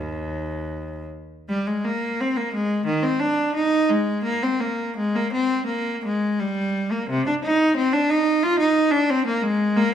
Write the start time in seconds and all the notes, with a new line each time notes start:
Already playing: D#2
1.49 G3
1.67 G#3
1.84 A#3
2.21 C4
2.37 A#3
2.53 G#3
2.86 D#3
3.03 C4
3.19 D4
3.55 D#4
3.90 G#3
4.23 A#3
4.43 C4
4.61 A#3
4.96 G#3
5.15 A#3
5.32 C4
5.66 A#3
6.04 G#3
6.39 G3
6.92 A#3
7.09 C3
7.26 D4
7.43 D#4
7.76 C4
7.93 D4
8.10 D#4
8.43 F4
8.59 D#4
8.90 D4
9.10 C4
9.26 A#3
9.42 G#3
9.76 A#3